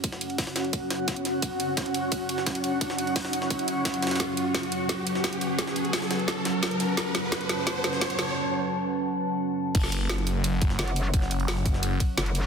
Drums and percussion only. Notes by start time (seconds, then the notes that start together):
0.04 kick, closed hi-hat, ride
0.12 snare
0.21 closed hi-hat, ride
0.30 ride
0.38 kick, snare, closed hi-hat, open hi-hat
0.47 snare
0.56 snare, closed hi-hat, ride
0.64 ride
0.73 kick, closed hi-hat, ride
0.90 snare, closed hi-hat, ride
1.08 kick, snare, closed hi-hat, ride
1.16 closed hi-hat
1.25 snare, closed hi-hat, ride
1.42 kick, closed hi-hat, ride
1.60 closed hi-hat, ride
1.77 kick, snare, closed hi-hat, ride
1.86 ride
1.94 closed hi-hat, ride
2.12 kick, closed hi-hat, ride
2.29 closed hi-hat, ride
2.38 snare
2.46 kick, snare, closed hi-hat, ride
2.55 closed hi-hat, ride
2.64 closed hi-hat, ride
2.81 kick, closed hi-hat, ride
2.90 snare
2.98 closed hi-hat, ride
3.07 ride
3.16 kick, snare, closed hi-hat, open hi-hat
3.25 snare
3.33 closed hi-hat, ride
3.42 snare
3.50 kick, closed hi-hat, ride
3.59 closed hi-hat
3.68 closed hi-hat, ride
3.85 kick, snare, closed hi-hat, ride
3.94 closed hi-hat
4.02 snare, closed hi-hat, ride
4.07 snare, ride
4.11 snare, ride
4.16 snare, ride
4.20 kick, snare, closed hi-hat, ride
4.37 closed hi-hat, ride
4.55 kick, snare, closed hi-hat, ride
4.63 ride
4.72 closed hi-hat, ride
4.89 kick, snare, closed hi-hat, ride
5.07 closed hi-hat, ride
5.15 snare
5.24 kick, snare, closed hi-hat, ride
5.33 closed hi-hat, ride
5.41 closed hi-hat, ride
5.59 kick, snare, closed hi-hat, ride
5.67 snare
5.76 closed hi-hat, ride
5.85 ride
5.93 kick, snare, closed hi-hat, open hi-hat
6.02 snare
6.11 snare, closed hi-hat, ride
6.19 ride
6.28 kick, snare, closed hi-hat, ride
6.45 snare, closed hi-hat, ride
6.63 kick, snare, closed hi-hat, ride
6.71 closed hi-hat
6.80 snare, closed hi-hat, ride
6.97 kick, snare, closed hi-hat, ride
7.15 snare, closed hi-hat, ride
7.32 kick, snare, closed hi-hat, ride
7.41 ride
7.49 snare, closed hi-hat, ride
7.67 kick, snare, closed hi-hat, ride
7.84 snare, closed hi-hat, ride
7.93 snare
8.01 kick, snare, closed hi-hat, ride
8.10 closed hi-hat, ride
8.19 snare, closed hi-hat, ride
9.75 kick, closed hi-hat, crash, ride
9.83 snare
9.92 closed hi-hat, ride
10.09 snare, closed hi-hat, ride
10.18 ride
10.27 open hi-hat, ride
10.44 closed hi-hat, ride
10.62 kick, closed hi-hat, ride
10.70 snare
10.79 snare, closed hi-hat, ride
10.88 closed hi-hat, ride
10.96 open hi-hat, ride
11.14 kick, closed hi-hat, ride
11.22 snare
11.31 closed hi-hat, ride
11.40 ride
11.48 snare, closed hi-hat, open hi-hat
11.57 snare
11.66 kick, open hi-hat, ride
11.74 snare
11.83 closed hi-hat, ride
12.00 kick, closed hi-hat, ride
12.18 snare, closed hi-hat, ride
12.26 closed hi-hat
12.35 snare, open hi-hat, ride